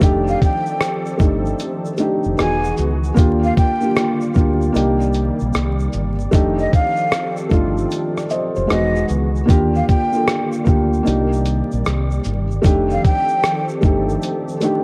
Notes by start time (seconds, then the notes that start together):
Already playing: D5
0.00 F1 D#3 F3 A3 C4 D4 D#4 G4 A4, kick, closed hi-hat, shaker
0.28 F5, shaker
0.42 G5, kick, closed hi-hat, shaker
0.66 shaker
0.81 cross-stick, closed hi-hat, shaker
1.06 shaker
1.18 G1 A3 D4 D#4, kick, shaker
1.21 G4, shaker
1.46 shaker
1.59 closed hi-hat, shaker
1.86 shaker
1.98 A3 D4 D#4 G4, closed hi-hat, shaker
2.24 F1, shaker
2.37 E1 E3 B3 D#4 F#4 G#4 G#5, cross-stick, closed hi-hat, shaker
2.64 shaker
2.77 C#2, shaker
3.04 shaker
3.15 D#2 D3 A#3 D4 F4 G4 D5, kick, shaker
3.19 closed hi-hat
3.43 F5, shaker
3.57 G5, kick, closed hi-hat, shaker
3.81 A#3 D4 F4 G4, shaker
3.96 cross-stick, closed hi-hat, shaker
4.21 shaker
4.34 D2 A#3 D4 F4, kick, shaker
4.37 G4, shaker
4.62 shaker
4.72 C2 C3 D#3 G3 A#3 D4 D#4 G4, closed hi-hat, shaker
5.01 shaker
5.13 closed hi-hat, shaker
5.39 A#1, shaker
5.53 C2, cross-stick, closed hi-hat, shaker
5.79 shaker
5.93 G1, shaker
6.20 shaker
6.31 F1 F3 A3 C4 D4 D#4 G4 A4, kick, closed hi-hat, shaker
6.59 D#5, shaker
6.73 F5, kick, closed hi-hat, shaker
6.97 shaker
7.12 cross-stick, closed hi-hat, shaker
7.37 shaker
7.49 G1 A3 D4 D#4, kick, shaker
7.53 F4, shaker
7.78 shaker
7.91 closed hi-hat, shaker
8.17 D5, cross-stick, shaker
8.30 C5 D#5, shaker
8.56 F1 A4 C5, shaker
8.67 E1 E3 G#3 B3 D#4 F#4 G#4 D#5, cross-stick, shaker
8.72 closed hi-hat
8.96 shaker
9.08 C#2, shaker
9.36 shaker
9.46 D#2 D3 A#3 D4 F4 G4 D5, kick, shaker
9.50 closed hi-hat
9.75 F5, shaker
9.89 G5, kick, closed hi-hat, shaker
10.13 A#3 D4 F4 A4, shaker
10.28 cross-stick, closed hi-hat, shaker
10.53 shaker
10.65 D2 A#3 D4 F4 G4, kick, shaker
10.69 shaker
10.93 shaker
11.03 C3 D#3 G3 A#3 D4 D#4, shaker
11.07 C2 G4, closed hi-hat
11.33 shaker
11.45 closed hi-hat, shaker
11.71 A#1, shaker
11.85 C2, cross-stick, closed hi-hat, shaker
12.11 shaker
12.24 G1, shaker
12.51 shaker
12.62 F1 F3 A3 C4 D4 D#4 G4 A4, kick, closed hi-hat, shaker
12.90 F5, shaker
13.05 G5, kick, closed hi-hat, shaker
13.28 shaker
13.44 cross-stick, closed hi-hat, shaker
13.69 shaker
13.81 G1 A3 D4 D#4, kick, shaker
13.84 G4, shaker
14.09 shaker
14.22 closed hi-hat, shaker
14.48 shaker
14.60 A3 D4 D#4 G4, closed hi-hat, shaker